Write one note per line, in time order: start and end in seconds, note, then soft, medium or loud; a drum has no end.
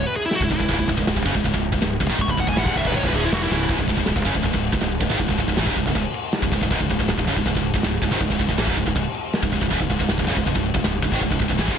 0.06 0.14 B4 loud
0.16 0.24 G#4 loud
0.26 0.36 E4 medium
0.31 snare medium
0.31 china medium
0.36 0.44 F#4 loud
0.41 0.50 C#1 medium
0.41 0.50 C#2 medium
0.41 0.50 G#2 medium
0.41 0.51 E4 loud
0.41 kick medium
0.50 0.59 C#1 medium
0.50 0.59 C#2 medium
0.50 0.59 G#2 medium
0.50 0.88 E4 loud
0.50 kick loud
0.60 0.69 C#1 medium
0.60 0.68 C#2 medium
0.60 0.69 G#2 medium
0.60 kick medium
0.69 0.78 C#1 medium
0.69 0.78 C#2 loud
0.69 0.78 G#2 loud
0.69 kick loud
0.69 china medium
0.78 0.87 C#1 medium
0.78 0.87 C#2 medium
0.78 0.88 G#2 medium
0.78 kick medium
0.88 0.97 C#1 medium
0.88 0.96 C#2 medium
0.88 0.96 G#2 medium
0.88 kick medium
0.97 1.06 C#1 medium
0.97 1.06 C#2 medium
0.97 1.06 G#2 medium
0.97 kick medium
1.07 1.16 C#1 medium
1.07 1.15 C#2 medium
1.07 1.15 G#2 medium
1.07 snare loud
1.07 china medium
1.16 1.25 C#1 medium
1.16 1.25 C#2 medium
1.16 1.26 G#2 medium
1.16 kick medium
1.25 1.34 F#1 loud
1.25 1.35 F#2 medium
1.25 1.35 C#3 loud
1.25 kick medium
1.35 1.44 C#1 medium
1.35 1.44 C#2 medium
1.35 1.44 G#2 medium
1.35 kick medium
1.44 1.53 C#1 medium
1.44 1.53 C#2 medium
1.44 1.53 G#2 medium
1.44 kick medium
1.44 china medium
1.54 1.71 C#1 medium
1.54 1.69 C#2 medium
1.54 1.69 G#2 medium
1.54 kick medium
1.72 1.81 C#1 medium
1.72 1.80 C#2 medium
1.72 1.81 G#2 medium
1.72 kick medium
1.82 2.00 C#1 medium
1.82 1.97 C#2 medium
1.82 1.97 G#2 medium
1.82 snare loud
1.82 china soft
2.00 2.09 C#1 medium
2.00 2.10 C#2 medium
2.00 2.09 G#2 medium
2.00 kick loud
2.10 2.18 G#1 loud
2.10 2.18 G#2 medium
2.10 2.19 D#3 medium
2.10 kick medium
2.19 2.27 C#1 medium
2.19 2.27 C#2 medium
2.19 2.28 G#2 medium
2.19 2.30 C#6 loud
2.19 kick loud
2.19 china medium
2.28 2.37 C#1 medium
2.28 2.37 C#2 medium
2.28 2.37 G#2 medium
2.28 2.39 B5 loud
2.28 kick medium
2.38 2.47 C#1 medium
2.38 2.47 C#2 medium
2.38 2.47 G#2 medium
2.38 2.48 F#5 loud
2.38 kick medium
2.47 2.56 C#1 medium
2.47 2.57 C#2 medium
2.47 2.57 G#2 medium
2.47 2.57 G#5 loud
2.47 kick medium
2.57 2.65 A1 medium
2.57 2.65 A2 medium
2.57 2.66 E3 medium
2.57 2.67 F#5 loud
2.57 snare loud
2.57 china medium
2.66 2.75 C#1 loud
2.66 2.74 C#2 medium
2.66 2.75 G#2 loud
2.66 2.76 F#5 medium
2.66 kick loud
2.75 2.85 D1 loud
2.75 2.84 D2 medium
2.75 2.84 A2 loud
2.75 2.85 E5 loud
2.75 kick medium
2.85 2.94 C#1 medium
2.85 2.94 C#2 medium
2.85 2.94 G#2 medium
2.85 2.95 B4 medium
2.85 kick medium
2.94 3.03 G#1 loud
2.94 3.03 G#2 medium
2.94 3.04 D#3 loud
2.94 3.04 C#5 loud
2.94 kick medium
2.94 china medium
3.04 3.12 C#1 loud
3.04 3.13 C#2 medium
3.04 3.13 G#2 loud
3.04 3.15 B4 loud
3.04 kick loud
3.13 3.31 D1 loud
3.13 3.32 D2 loud
3.13 3.32 A2 loud
3.13 3.32 D3 loud
3.13 3.24 G#4 loud
3.13 kick medium
3.25 3.33 E4 medium
3.32 3.50 E1 loud
3.32 3.50 E2 medium
3.32 3.51 B2 medium
3.32 3.51 E3 loud
3.32 3.42 F#4 loud
3.32 snare loud
3.32 china medium
3.43 3.51 E4 loud
3.51 3.68 C#1 loud
3.51 3.69 C#2 loud
3.51 3.70 G#2 loud
3.51 3.70 C#3 loud
3.51 3.70 E4 loud
3.51 snare medium
3.69 3.78 C#1 loud
3.69 3.79 C#2 loud
3.69 3.79 G#2 loud
3.69 kick loud
3.69 crash loud
3.69 crash medium
3.78 3.87 C#1 medium
3.78 3.88 C#2 medium
3.78 3.89 G#2 medium
3.78 kick medium
3.88 3.97 C#1 medium
3.88 3.98 C#2 medium
3.88 3.98 G#2 medium
3.88 kick medium
3.88 crash medium
3.97 4.06 C#1 medium
3.97 4.07 C#2 medium
3.97 4.07 G#2 medium
3.97 kick medium
4.06 4.15 C#1 medium
4.06 4.15 C#2 medium
4.06 4.16 G#2 medium
4.06 snare loud
4.06 crash medium
4.16 4.25 C#1 medium
4.16 4.26 C#2 medium
4.16 4.26 G#2 medium
4.16 kick loud
4.25 4.34 F#1 medium
4.25 4.35 F#2 loud
4.25 4.35 C#3 medium
4.25 kick medium
4.25 crash medium
4.35 4.44 C#1 medium
4.35 4.44 C#2 medium
4.35 4.44 G#2 medium
4.35 kick medium
4.44 4.53 C#1 medium
4.44 4.53 C#2 medium
4.44 4.53 G#2 medium
4.44 kick medium
4.44 crash medium
4.54 4.72 C#1 medium
4.54 4.69 C#2 medium
4.54 4.69 G#2 medium
4.54 kick medium
4.63 crash medium
4.72 4.82 C#1 medium
4.72 4.82 C#2 medium
4.72 4.82 G#2 medium
4.72 kick loud
4.81 5.00 C#1 medium
4.81 4.98 C#2 medium
4.81 4.98 G#2 medium
4.81 snare medium
4.81 crash medium
5.00 5.10 C#1 medium
5.00 5.10 C#2 medium
5.00 5.10 G#2 medium
5.00 kick loud
5.00 crash medium
5.10 5.19 G#1 loud
5.10 5.19 G#2 loud
5.10 5.20 D#3 loud
5.10 kick medium
5.18 5.29 C#1 medium
5.18 5.29 C#2 medium
5.18 5.29 G#2 medium
5.18 kick loud
5.18 crash medium
5.29 5.37 C#1 medium
5.29 5.39 C#2 medium
5.29 5.39 G#2 medium
5.29 kick medium
5.38 5.47 C#1 medium
5.38 5.48 C#2 medium
5.38 5.48 G#2 medium
5.38 kick medium
5.38 crash medium
5.48 5.57 C#1 medium
5.48 5.58 C#2 medium
5.48 5.58 G#2 medium
5.48 kick medium
5.57 5.66 A1 loud
5.57 5.67 A2 loud
5.57 5.68 E3 loud
5.57 snare loud
5.57 crash medium
5.67 5.76 C#1 loud
5.67 5.76 C#2 medium
5.67 5.77 G#2 medium
5.67 kick loud
5.76 5.85 C#1 medium
5.76 5.87 C#2 medium
5.76 5.87 G#2 medium
5.76 kick medium
5.76 crash medium
5.86 5.95 C#1 medium
5.86 5.96 C#2 medium
5.86 5.97 G#2 medium
5.86 kick medium
5.95 6.04 C#1 medium
5.95 6.06 C#2 medium
5.95 6.06 G#2 medium
5.95 kick medium
5.95 crash medium
6.14 crash medium
6.33 snare loud
6.33 crash medium
6.42 6.51 C#1 medium
6.42 6.51 C#2 medium
6.42 6.52 G#2 medium
6.42 kick medium
6.52 6.60 C#1 medium
6.52 6.61 C#2 medium
6.52 6.62 G#2 medium
6.52 kick medium
6.52 crash medium
6.61 6.70 C#1 medium
6.61 6.70 C#2 medium
6.61 6.70 G#2 medium
6.61 kick medium
6.70 6.79 C#1 medium
6.70 6.80 C#2 loud
6.70 6.80 G#2 loud
6.70 kick loud
6.70 crash medium
6.80 6.89 C#1 medium
6.80 6.89 C#2 medium
6.80 6.90 G#2 medium
6.80 kick medium
6.90 6.98 C#1 medium
6.90 6.98 C#2 medium
6.90 6.99 G#2 medium
6.90 kick medium
6.90 crash medium
6.99 7.07 C#1 medium
6.99 7.07 C#2 medium
6.99 7.08 G#2 medium
6.99 kick medium
7.07 7.16 C#1 medium
7.07 7.18 C#2 medium
7.07 7.18 G#2 medium
7.07 snare loud
7.07 crash medium
7.18 7.27 C#1 medium
7.18 7.27 C#2 medium
7.18 7.28 G#2 medium
7.18 kick medium
7.27 7.36 F#1 loud
7.27 7.37 F#2 medium
7.27 7.37 C#3 medium
7.27 kick medium
7.27 crash medium
7.36 7.45 C#1 medium
7.36 7.45 C#2 medium
7.36 7.46 G#2 medium
7.36 kick medium
7.46 7.55 C#1 medium
7.46 7.55 C#2 medium
7.46 7.55 G#2 medium
7.46 kick medium
7.46 crash medium
7.55 7.73 C#1 medium
7.55 7.71 C#2 medium
7.55 7.71 G#2 medium
7.55 kick medium
7.64 crash medium
7.74 7.83 C#1 medium
7.74 7.83 C#2 medium
7.74 7.83 G#2 medium
7.74 kick medium
7.83 8.01 C#1 medium
7.83 7.99 C#2 medium
7.83 7.99 G#2 medium
7.83 snare loud
7.83 crash medium
8.02 8.11 C#1 medium
8.02 8.12 C#2 medium
8.02 8.11 G#2 medium
8.02 kick loud
8.02 crash medium
8.11 8.20 G#1 loud
8.11 8.20 G#2 medium
8.11 8.21 D#3 loud
8.11 kick medium
8.20 8.30 C#1 medium
8.20 8.30 C#2 medium
8.20 8.31 G#2 medium
8.20 kick loud
8.20 crash loud
8.30 8.39 C#1 medium
8.30 8.39 C#2 medium
8.30 8.40 G#2 medium
8.30 kick medium
8.39 8.48 C#1 medium
8.39 8.49 C#2 medium
8.39 8.50 G#2 medium
8.39 kick medium
8.39 crash medium
8.49 8.57 C#1 medium
8.49 8.59 C#2 medium
8.49 8.59 G#2 medium
8.49 kick medium
8.58 8.67 A1 medium
8.58 8.68 A2 loud
8.58 8.68 E3 loud
8.58 snare loud
8.58 crash loud
8.67 8.76 C#1 loud
8.67 8.76 C#2 medium
8.67 8.77 G#2 loud
8.67 kick loud
8.77 8.86 C#1 medium
8.77 8.85 C#2 medium
8.77 8.85 G#2 medium
8.77 kick medium
8.77 crash medium
8.86 8.95 C#1 medium
8.86 8.95 C#2 medium
8.86 8.95 G#2 medium
8.86 kick medium
8.96 9.05 C#1 medium
8.96 9.05 C#2 medium
8.96 9.06 G#2 medium
8.96 kick medium
8.96 crash medium
9.15 crash medium
9.33 snare loud
9.33 crash medium
9.43 9.52 C#1 medium
9.43 9.52 C#2 medium
9.43 9.52 G#2 medium
9.43 kick medium
9.52 9.61 C#1 medium
9.52 9.61 C#2 medium
9.52 9.61 G#2 medium
9.52 kick medium
9.52 crash medium
9.62 9.71 C#1 medium
9.62 9.71 C#2 medium
9.62 9.71 G#2 medium
9.62 kick medium
9.70 9.80 C#1 medium
9.70 9.79 C#2 loud
9.70 9.80 G#2 loud
9.70 kick medium
9.70 crash medium
9.80 9.89 C#1 medium
9.80 9.89 C#2 medium
9.80 9.89 G#2 medium
9.80 kick medium
9.90 9.99 C#1 medium
9.90 9.99 C#2 medium
9.90 10.00 G#2 medium
9.90 kick medium
9.90 crash medium
9.99 10.08 C#1 medium
9.99 10.08 C#2 medium
9.99 10.08 G#2 medium
9.99 kick medium
10.08 10.18 C#1 medium
10.08 10.18 C#2 medium
10.08 10.18 G#2 medium
10.08 snare loud
10.08 crash medium
10.18 10.27 C#1 medium
10.18 10.27 C#2 medium
10.18 10.28 G#2 medium
10.18 kick loud
10.27 10.36 F#1 loud
10.27 10.37 F#2 medium
10.27 10.37 C#3 medium
10.27 kick loud
10.27 crash medium
10.37 10.46 C#1 medium
10.37 10.45 C#2 medium
10.37 10.46 G#2 medium
10.37 kick medium
10.46 10.55 C#1 medium
10.46 10.54 C#2 medium
10.46 10.54 G#2 medium
10.46 kick medium
10.46 crash medium
10.55 10.73 C#1 medium
10.55 10.70 C#2 medium
10.55 10.71 G#2 medium
10.55 kick loud
10.66 crash medium
10.74 10.83 C#1 medium
10.74 10.83 C#2 medium
10.74 10.83 G#2 medium
10.74 kick medium
10.84 11.02 C#1 medium
10.84 10.99 C#2 medium
10.84 10.99 G#2 medium
10.84 snare loud
10.84 crash medium
11.02 11.11 C#1 medium
11.02 11.12 C#2 medium
11.02 11.11 G#2 medium
11.02 kick loud
11.02 crash medium
11.12 11.21 G#1 loud
11.12 11.20 G#2 medium
11.12 11.21 D#3 medium
11.12 kick medium
11.21 11.30 C#1 medium
11.21 11.30 C#2 medium
11.21 11.30 G#2 medium
11.21 kick medium
11.21 crash medium
11.31 11.40 C#1 medium
11.31 11.38 C#2 medium
11.31 11.38 G#2 medium
11.31 kick medium
11.39 11.49 C#1 medium
11.39 11.47 C#2 medium
11.39 11.48 G#2 medium
11.39 kick medium
11.39 crash medium
11.48 11.58 C#1 medium
11.48 11.58 C#2 medium
11.48 11.58 G#2 medium
11.48 kick medium
11.58 11.68 A1 medium
11.58 11.67 A2 medium
11.58 11.68 E3 loud
11.58 snare loud
11.58 crash medium
11.68 11.77 C#1 medium
11.68 11.76 C#2 loud
11.68 11.77 G#2 loud
11.68 kick loud